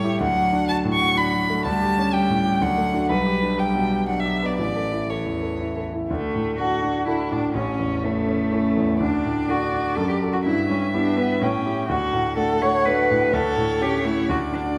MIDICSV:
0, 0, Header, 1, 4, 480
1, 0, Start_track
1, 0, Key_signature, 2, "major"
1, 0, Tempo, 482315
1, 207, Time_signature, 3, 2, 24, 8
1, 3568, Tempo, 501672
1, 5968, Tempo, 487409
1, 7408, Tempo, 481541
1, 14610, End_track
2, 0, Start_track
2, 0, Title_t, "Violin"
2, 0, Program_c, 0, 40
2, 0, Note_on_c, 0, 73, 66
2, 200, Note_off_c, 0, 73, 0
2, 213, Note_on_c, 0, 78, 82
2, 677, Note_off_c, 0, 78, 0
2, 681, Note_on_c, 0, 81, 78
2, 761, Note_off_c, 0, 81, 0
2, 925, Note_on_c, 0, 85, 88
2, 1165, Note_on_c, 0, 83, 77
2, 1180, Note_off_c, 0, 85, 0
2, 1638, Note_off_c, 0, 83, 0
2, 1644, Note_on_c, 0, 81, 91
2, 2119, Note_on_c, 0, 79, 78
2, 2134, Note_off_c, 0, 81, 0
2, 2610, Note_on_c, 0, 78, 80
2, 2625, Note_off_c, 0, 79, 0
2, 3083, Note_off_c, 0, 78, 0
2, 3089, Note_on_c, 0, 71, 76
2, 3570, Note_on_c, 0, 79, 69
2, 3584, Note_off_c, 0, 71, 0
2, 4038, Note_off_c, 0, 79, 0
2, 4044, Note_on_c, 0, 78, 58
2, 4153, Note_on_c, 0, 76, 57
2, 4167, Note_off_c, 0, 78, 0
2, 4404, Note_on_c, 0, 74, 53
2, 4418, Note_off_c, 0, 76, 0
2, 4515, Note_off_c, 0, 74, 0
2, 4521, Note_on_c, 0, 74, 65
2, 5013, Note_on_c, 0, 73, 46
2, 5028, Note_off_c, 0, 74, 0
2, 5733, Note_off_c, 0, 73, 0
2, 5960, Note_on_c, 0, 57, 65
2, 6450, Note_on_c, 0, 66, 57
2, 6465, Note_off_c, 0, 57, 0
2, 6924, Note_off_c, 0, 66, 0
2, 6929, Note_on_c, 0, 64, 58
2, 7174, Note_on_c, 0, 62, 53
2, 7188, Note_off_c, 0, 64, 0
2, 7408, Note_off_c, 0, 62, 0
2, 7414, Note_on_c, 0, 61, 66
2, 7899, Note_on_c, 0, 57, 59
2, 7914, Note_off_c, 0, 61, 0
2, 8854, Note_off_c, 0, 57, 0
2, 8860, Note_on_c, 0, 74, 54
2, 10258, Note_off_c, 0, 74, 0
2, 10309, Note_on_c, 0, 76, 53
2, 11267, Note_on_c, 0, 79, 50
2, 11282, Note_off_c, 0, 76, 0
2, 11748, Note_on_c, 0, 78, 60
2, 11763, Note_off_c, 0, 79, 0
2, 13163, Note_off_c, 0, 78, 0
2, 13169, Note_on_c, 0, 73, 62
2, 14137, Note_on_c, 0, 74, 59
2, 14152, Note_off_c, 0, 73, 0
2, 14610, Note_off_c, 0, 74, 0
2, 14610, End_track
3, 0, Start_track
3, 0, Title_t, "Cello"
3, 0, Program_c, 1, 42
3, 0, Note_on_c, 1, 55, 50
3, 180, Note_off_c, 1, 55, 0
3, 210, Note_on_c, 1, 54, 52
3, 652, Note_off_c, 1, 54, 0
3, 693, Note_on_c, 1, 54, 55
3, 1640, Note_on_c, 1, 55, 57
3, 1655, Note_off_c, 1, 54, 0
3, 2111, Note_off_c, 1, 55, 0
3, 2117, Note_on_c, 1, 55, 52
3, 2601, Note_on_c, 1, 54, 53
3, 2616, Note_off_c, 1, 55, 0
3, 3070, Note_on_c, 1, 55, 51
3, 3085, Note_off_c, 1, 54, 0
3, 3557, Note_off_c, 1, 55, 0
3, 3563, Note_on_c, 1, 55, 44
3, 4028, Note_off_c, 1, 55, 0
3, 4035, Note_on_c, 1, 54, 45
3, 4516, Note_on_c, 1, 52, 39
3, 4530, Note_off_c, 1, 54, 0
3, 4997, Note_off_c, 1, 52, 0
3, 5002, Note_on_c, 1, 52, 36
3, 5755, Note_off_c, 1, 52, 0
3, 5973, Note_on_c, 1, 57, 62
3, 6416, Note_off_c, 1, 57, 0
3, 6451, Note_on_c, 1, 66, 65
3, 6912, Note_off_c, 1, 66, 0
3, 6918, Note_on_c, 1, 64, 59
3, 6997, Note_off_c, 1, 64, 0
3, 7155, Note_on_c, 1, 62, 56
3, 7392, Note_off_c, 1, 62, 0
3, 7398, Note_on_c, 1, 61, 61
3, 7880, Note_on_c, 1, 57, 61
3, 7895, Note_off_c, 1, 61, 0
3, 8851, Note_off_c, 1, 57, 0
3, 8865, Note_on_c, 1, 62, 69
3, 9347, Note_on_c, 1, 66, 64
3, 9362, Note_off_c, 1, 62, 0
3, 9819, Note_on_c, 1, 69, 69
3, 9834, Note_off_c, 1, 66, 0
3, 9928, Note_off_c, 1, 69, 0
3, 9934, Note_on_c, 1, 67, 65
3, 10014, Note_off_c, 1, 67, 0
3, 10172, Note_on_c, 1, 66, 62
3, 10221, Note_off_c, 1, 66, 0
3, 10285, Note_on_c, 1, 64, 66
3, 10523, Note_off_c, 1, 64, 0
3, 10529, Note_on_c, 1, 61, 61
3, 10765, Note_off_c, 1, 61, 0
3, 10771, Note_on_c, 1, 62, 63
3, 11011, Note_on_c, 1, 59, 64
3, 11026, Note_off_c, 1, 62, 0
3, 11246, Note_off_c, 1, 59, 0
3, 11252, Note_on_c, 1, 61, 68
3, 11717, Note_off_c, 1, 61, 0
3, 11723, Note_on_c, 1, 66, 75
3, 12198, Note_off_c, 1, 66, 0
3, 12209, Note_on_c, 1, 69, 71
3, 12458, Note_on_c, 1, 73, 77
3, 12473, Note_off_c, 1, 69, 0
3, 12689, Note_on_c, 1, 71, 75
3, 12704, Note_off_c, 1, 73, 0
3, 13174, Note_on_c, 1, 69, 84
3, 13189, Note_off_c, 1, 71, 0
3, 13651, Note_on_c, 1, 67, 74
3, 13666, Note_off_c, 1, 69, 0
3, 13883, Note_on_c, 1, 64, 76
3, 13898, Note_off_c, 1, 67, 0
3, 14121, Note_off_c, 1, 64, 0
3, 14127, Note_on_c, 1, 66, 76
3, 14207, Note_off_c, 1, 66, 0
3, 14367, Note_on_c, 1, 62, 67
3, 14447, Note_off_c, 1, 62, 0
3, 14610, End_track
4, 0, Start_track
4, 0, Title_t, "Grand piano"
4, 0, Program_c, 2, 0
4, 0, Control_c, 2, 64, 127
4, 0, Note_on_c, 2, 45, 55
4, 0, Note_on_c, 2, 57, 42
4, 39, Note_on_c, 2, 64, 44
4, 46, Note_on_c, 2, 67, 45
4, 136, Note_off_c, 2, 57, 0
4, 186, Note_off_c, 2, 45, 0
4, 187, Note_off_c, 2, 64, 0
4, 190, Note_off_c, 2, 67, 0
4, 201, Note_on_c, 2, 38, 57
4, 227, Control_c, 2, 64, 0
4, 365, Note_on_c, 2, 66, 46
4, 386, Control_c, 2, 64, 127
4, 522, Note_on_c, 2, 62, 42
4, 620, Note_off_c, 2, 66, 0
4, 686, Note_on_c, 2, 66, 44
4, 777, Note_off_c, 2, 62, 0
4, 841, Note_on_c, 2, 45, 44
4, 940, Note_off_c, 2, 66, 0
4, 1007, Note_on_c, 2, 66, 51
4, 1098, Note_off_c, 2, 45, 0
4, 1155, Note_on_c, 2, 62, 48
4, 1262, Note_off_c, 2, 66, 0
4, 1324, Note_on_c, 2, 66, 44
4, 1416, Note_off_c, 2, 62, 0
4, 1489, Note_on_c, 2, 57, 45
4, 1580, Note_off_c, 2, 66, 0
4, 1600, Note_off_c, 2, 38, 0
4, 1644, Note_on_c, 2, 38, 58
4, 1646, Note_off_c, 2, 57, 0
4, 1663, Control_c, 2, 64, 0
4, 1806, Control_c, 2, 64, 127
4, 1811, Note_on_c, 2, 67, 46
4, 1973, Note_on_c, 2, 61, 37
4, 2063, Note_off_c, 2, 67, 0
4, 2126, Note_on_c, 2, 67, 44
4, 2224, Note_off_c, 2, 61, 0
4, 2285, Note_on_c, 2, 45, 41
4, 2380, Note_off_c, 2, 67, 0
4, 2443, Note_on_c, 2, 67, 46
4, 2539, Note_off_c, 2, 45, 0
4, 2573, Note_off_c, 2, 38, 0
4, 2602, Note_off_c, 2, 67, 0
4, 2602, Note_on_c, 2, 38, 57
4, 2619, Control_c, 2, 64, 0
4, 2756, Control_c, 2, 64, 127
4, 2764, Note_on_c, 2, 57, 44
4, 2923, Note_on_c, 2, 62, 40
4, 2926, Note_on_c, 2, 66, 48
4, 3020, Note_off_c, 2, 57, 0
4, 3067, Note_off_c, 2, 62, 0
4, 3068, Note_off_c, 2, 38, 0
4, 3069, Note_off_c, 2, 66, 0
4, 3083, Note_on_c, 2, 35, 53
4, 3104, Control_c, 2, 64, 0
4, 3247, Note_on_c, 2, 67, 44
4, 3296, Control_c, 2, 64, 127
4, 3404, Note_on_c, 2, 62, 35
4, 3505, Note_off_c, 2, 67, 0
4, 3566, Note_on_c, 2, 67, 37
4, 3661, Note_off_c, 2, 62, 0
4, 3726, Note_on_c, 2, 47, 35
4, 3818, Note_off_c, 2, 67, 0
4, 3881, Note_on_c, 2, 67, 36
4, 3978, Note_off_c, 2, 47, 0
4, 4048, Note_on_c, 2, 62, 36
4, 4136, Note_off_c, 2, 67, 0
4, 4206, Note_on_c, 2, 67, 36
4, 4300, Note_off_c, 2, 62, 0
4, 4376, Note_on_c, 2, 59, 34
4, 4461, Note_off_c, 2, 67, 0
4, 4485, Note_off_c, 2, 35, 0
4, 4530, Note_off_c, 2, 59, 0
4, 4530, Note_on_c, 2, 33, 39
4, 4541, Control_c, 2, 64, 0
4, 4690, Note_on_c, 2, 69, 32
4, 4710, Control_c, 2, 64, 127
4, 4845, Note_on_c, 2, 64, 26
4, 4945, Note_off_c, 2, 69, 0
4, 5016, Note_on_c, 2, 69, 30
4, 5102, Note_off_c, 2, 64, 0
4, 5169, Note_on_c, 2, 40, 26
4, 5268, Note_off_c, 2, 69, 0
4, 5329, Note_on_c, 2, 69, 30
4, 5425, Note_off_c, 2, 40, 0
4, 5500, Note_on_c, 2, 64, 31
4, 5585, Note_off_c, 2, 69, 0
4, 5654, Note_on_c, 2, 69, 31
4, 5752, Note_off_c, 2, 64, 0
4, 5815, Note_on_c, 2, 64, 29
4, 5908, Note_off_c, 2, 69, 0
4, 5932, Note_off_c, 2, 33, 0
4, 5970, Note_off_c, 2, 64, 0
4, 5978, Note_on_c, 2, 38, 49
4, 5986, Control_c, 2, 64, 0
4, 6135, Control_c, 2, 64, 127
4, 6216, Note_on_c, 2, 45, 31
4, 6460, Note_on_c, 2, 62, 32
4, 6464, Note_on_c, 2, 66, 31
4, 6470, Note_on_c, 2, 69, 37
4, 6594, Note_off_c, 2, 45, 0
4, 6670, Note_off_c, 2, 62, 0
4, 6672, Note_off_c, 2, 66, 0
4, 6675, Note_off_c, 2, 69, 0
4, 6687, Note_on_c, 2, 62, 37
4, 6911, Note_off_c, 2, 62, 0
4, 6926, Note_on_c, 2, 62, 37
4, 6931, Note_on_c, 2, 66, 36
4, 6936, Note_on_c, 2, 69, 41
4, 7143, Note_off_c, 2, 62, 0
4, 7146, Note_off_c, 2, 66, 0
4, 7149, Note_off_c, 2, 69, 0
4, 7174, Note_on_c, 2, 45, 37
4, 7373, Note_off_c, 2, 38, 0
4, 7401, Note_on_c, 2, 33, 50
4, 7410, Note_off_c, 2, 45, 0
4, 7426, Control_c, 2, 64, 0
4, 7566, Control_c, 2, 64, 127
4, 7643, Note_on_c, 2, 40, 31
4, 7893, Note_on_c, 2, 61, 33
4, 7893, Note_on_c, 2, 64, 33
4, 7900, Note_on_c, 2, 69, 37
4, 8034, Note_off_c, 2, 40, 0
4, 8110, Note_off_c, 2, 61, 0
4, 8110, Note_off_c, 2, 64, 0
4, 8114, Note_off_c, 2, 69, 0
4, 8125, Note_on_c, 2, 61, 37
4, 8353, Note_off_c, 2, 61, 0
4, 8368, Note_on_c, 2, 61, 36
4, 8370, Note_on_c, 2, 64, 36
4, 8381, Note_on_c, 2, 69, 38
4, 8589, Note_off_c, 2, 61, 0
4, 8589, Note_off_c, 2, 64, 0
4, 8595, Note_off_c, 2, 69, 0
4, 8615, Note_on_c, 2, 40, 37
4, 8814, Note_off_c, 2, 33, 0
4, 8849, Note_on_c, 2, 38, 47
4, 8856, Note_off_c, 2, 40, 0
4, 8877, Control_c, 2, 64, 0
4, 9029, Control_c, 2, 64, 127
4, 9101, Note_on_c, 2, 45, 35
4, 9331, Note_on_c, 2, 62, 34
4, 9332, Note_on_c, 2, 66, 34
4, 9337, Note_on_c, 2, 69, 38
4, 9485, Note_off_c, 2, 45, 0
4, 9552, Note_off_c, 2, 62, 0
4, 9552, Note_off_c, 2, 66, 0
4, 9555, Note_off_c, 2, 69, 0
4, 9582, Note_on_c, 2, 62, 38
4, 9786, Note_off_c, 2, 38, 0
4, 9813, Note_on_c, 2, 42, 53
4, 9821, Note_off_c, 2, 62, 0
4, 9840, Control_c, 2, 64, 0
4, 10010, Control_c, 2, 64, 127
4, 10062, Note_on_c, 2, 66, 40
4, 10068, Note_on_c, 2, 69, 41
4, 10275, Note_off_c, 2, 66, 0
4, 10278, Note_off_c, 2, 69, 0
4, 10279, Note_off_c, 2, 42, 0
4, 10304, Note_on_c, 2, 43, 53
4, 10317, Control_c, 2, 64, 0
4, 10505, Control_c, 2, 64, 127
4, 10546, Note_on_c, 2, 55, 35
4, 10780, Note_on_c, 2, 59, 36
4, 10783, Note_on_c, 2, 64, 36
4, 10787, Note_on_c, 2, 67, 39
4, 10924, Note_off_c, 2, 55, 0
4, 10994, Note_off_c, 2, 59, 0
4, 10995, Note_off_c, 2, 64, 0
4, 10998, Note_off_c, 2, 67, 0
4, 11013, Note_on_c, 2, 59, 44
4, 11230, Note_off_c, 2, 43, 0
4, 11253, Note_on_c, 2, 45, 56
4, 11254, Note_off_c, 2, 59, 0
4, 11272, Control_c, 2, 64, 0
4, 11416, Control_c, 2, 64, 127
4, 11496, Note_on_c, 2, 64, 39
4, 11501, Note_on_c, 2, 67, 42
4, 11711, Note_off_c, 2, 64, 0
4, 11714, Note_off_c, 2, 67, 0
4, 11720, Note_off_c, 2, 45, 0
4, 11731, Note_on_c, 2, 38, 55
4, 11755, Control_c, 2, 64, 0
4, 11911, Control_c, 2, 64, 127
4, 11969, Note_on_c, 2, 45, 36
4, 12207, Note_on_c, 2, 57, 40
4, 12212, Note_on_c, 2, 66, 42
4, 12213, Note_on_c, 2, 62, 37
4, 12353, Note_off_c, 2, 45, 0
4, 12424, Note_off_c, 2, 57, 0
4, 12427, Note_off_c, 2, 62, 0
4, 12427, Note_off_c, 2, 66, 0
4, 12454, Note_on_c, 2, 57, 45
4, 12680, Note_off_c, 2, 57, 0
4, 12695, Note_on_c, 2, 57, 43
4, 12698, Note_on_c, 2, 62, 44
4, 12702, Note_on_c, 2, 66, 46
4, 12908, Note_off_c, 2, 57, 0
4, 12909, Note_off_c, 2, 62, 0
4, 12912, Note_off_c, 2, 66, 0
4, 12941, Note_on_c, 2, 45, 44
4, 13126, Note_off_c, 2, 38, 0
4, 13164, Note_on_c, 2, 38, 64
4, 13174, Note_off_c, 2, 45, 0
4, 13185, Control_c, 2, 64, 0
4, 13361, Control_c, 2, 64, 127
4, 13403, Note_on_c, 2, 45, 40
4, 13642, Note_on_c, 2, 57, 40
4, 13645, Note_on_c, 2, 61, 43
4, 13645, Note_on_c, 2, 67, 43
4, 13789, Note_off_c, 2, 45, 0
4, 13861, Note_off_c, 2, 57, 0
4, 13862, Note_off_c, 2, 61, 0
4, 13862, Note_off_c, 2, 67, 0
4, 13883, Note_on_c, 2, 57, 42
4, 14096, Note_off_c, 2, 38, 0
4, 14121, Note_on_c, 2, 38, 61
4, 14124, Note_off_c, 2, 57, 0
4, 14146, Control_c, 2, 64, 0
4, 14299, Control_c, 2, 64, 127
4, 14355, Note_on_c, 2, 62, 45
4, 14363, Note_on_c, 2, 66, 48
4, 14577, Note_off_c, 2, 62, 0
4, 14581, Note_off_c, 2, 66, 0
4, 14590, Note_off_c, 2, 38, 0
4, 14610, End_track
0, 0, End_of_file